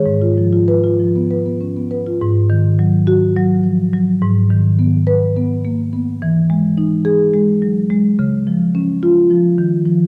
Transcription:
X:1
M:7/8
L:1/16
Q:1/4=106
K:G#dor
V:1 name="Marimba"
z4 B2 z8 | z6 F4 z4 | z6 B4 z4 | z6 G4 z4 |
z6 E4 z4 |]
V:2 name="Marimba" clef=bass
G,, E E, E2 E E, B, B B, C B, B E | G,,2 D,2 F,3 z F,2 E,2 F,2 | G,,2 D,2 B,3 z B,2 A,2 B,2 | =E,2 G,2 D3 z G,2 F,2 G,2 |
C,2 E,2 C3 z E,2 D,2 E,2 |]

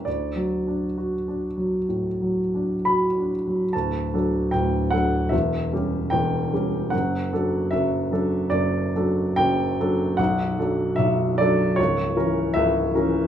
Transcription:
X:1
M:4/4
L:1/8
Q:1/4=75
K:D
V:1 name="Grand piano"
d6 b2 | a2 g f e2 g2 | f2 e2 d2 g2 | f2 e d c2 e2 |]
V:2 name="Grand piano" clef=bass
(3D,, F, D (3F D F, (3A,, F, D (3F D F, | [D,,,D,,] [F,DA] [D,,,D,,] [F,DA] [E,,,E,,] [G,CG] [E,,,E,,] [G,CG] | [F,,,F,,] [F,DA] [F,,,F,,] [F,DA] [F,,,F,,] [F,DA] [F,,,F,,] [F,DA] | [B,,,,B,,,] [F,DA] [B,,,,B,,,] [F,DA] [C,,,C,,] [E,C^A] [C,,,C,,] [E,CA] |]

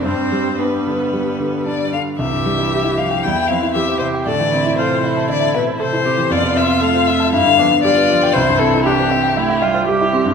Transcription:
X:1
M:4/4
L:1/16
Q:1/4=117
K:C
V:1 name="Violin"
c4 B8 d2 f2 | e6 f2 g2 f2 e2 c2 | d4 c4 d2 B2 c4 | d2 e2 f2 e2 f4 d4 |
c2 A2 G6 z6 |]
V:2 name="Grand piano"
G,,2 G,2 D2 D,2 G,2 D,2 D2 D,2 | C,, G,, G, E G E e g E,, E, C E G c e g | A,, E, C E A c e a e a e c A E C E, | F,, C, C F A c f a G,, D, B, D G B d g |
C,, G,, C E G c e g e g e c G E C G,, |]
V:3 name="Viola"
G,4 G,8- G,2 z2 | G8 E4 G4 | A2 E2 F2 E6 A2 G2 | F8 E2 D2 F4 |
E4 D2 C2 E2 F2 G4 |]
V:4 name="Cello" clef=bass
C4 B,8 z4 | E,6 F,2 G,2 F,2 E,2 C,2 | D,4 C,4 D,2 B,,2 C,4 | B,4 A,4 G,2 F,2 G,2 F,2 |
E,8 A,2 G,2 G,4 |]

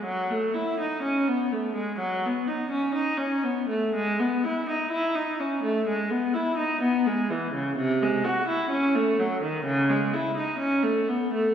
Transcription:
X:1
M:4/4
L:1/16
Q:1/4=63
K:E
V:1 name="Viola"
F, A, E D C B, A, G, F, B, D C D C B, A, | G, B, E D E D C A, G, B, E D B, G, E, C, | [K:C#m] ^B,, G, F E C A, F, D, C, G, E D C A, =B, A, |]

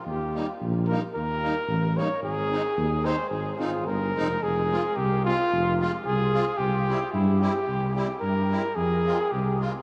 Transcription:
X:1
M:2/4
L:1/8
Q:1/4=110
K:Ab
V:1 name="Trumpet"
G2 z B | B3 d | A3 c | A F B2 |
[K:Fm] A2 G F- | F F A2 | G2 =E G- | G G B2 |
A2 G z |]
V:2 name="Accordion"
z [G,B,E] z [G,B,E] | z [G,B,E] z [G,B,E] | z [A,CE] z [A,CE] | z [A,CE] z [A,CE] |
[K:Fm] z [A,CF] z [A,CF] | z [A,CF] z [A,CF] | z [G,C=E] z [G,CE] | z [G,C=E] z [G,CE] |
z [A,CF] z [A,CF] |]
V:3 name="Tuba" clef=bass
E,,2 B,,,2 | E,,2 =A,,,2 | A,,,2 E,,2 | A,,, A,,, G,,, F,,, |
[K:Fm] F,,,2 C,,2 | F,,,2 C,,2 | C,,2 G,,2 | C,,2 G,,2 |
F,,2 C,,2 |]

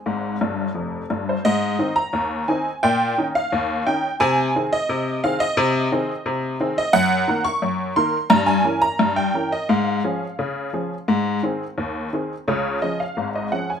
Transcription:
X:1
M:2/4
L:1/16
Q:1/4=87
K:Ab
V:1 name="Honky-tonk piano"
[Aa]6 z c | e3 b3 a2 | g3 f3 g2 | a3 e3 f e- |
e6- e e | [K:Db] g3 d'3 c'2 | b a2 b2 =g2 e | f8- |
f6 z2 | d2 e f2 e g a |]
V:2 name="Honky-tonk piano" clef=bass
[A,,,A,,]2 [G,,,G,,]2 [F,,,F,,]2 [G,,,G,,]2 | A,,2 [E,CE]2 E,,2 [E,CE]2 | B,,2 [E,DE]2 E,,2 [E,DE]2 | C,2 [E,CA]2 C,2 [E,CA]2 |
C,2 [E,CA]2 C,2 [E,CA]2 | [K:Db] G,,2 [E,B,B]2 G,,2 [E,B,B]2 | =G,,2 [=E,DB]2 G,,2 [E,DB]2 | A,,2 [F,DA]2 D,2 [F,DA]2 |
A,,2 [E,CA]2 E,,2 [E,CA]2 | [D,,D,]2 [F,DA]2 [A,,,A,,]2 [F,DA]2 |]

